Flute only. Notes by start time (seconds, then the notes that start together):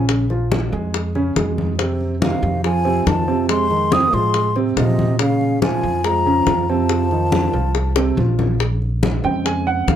2.22 F5
2.65 G#5
3.08 A5
3.50 C6
3.93 D#6
4.14 C6
4.78 D#5
5.21 F5
5.64 G#5
6.06 A#5
6.70 A5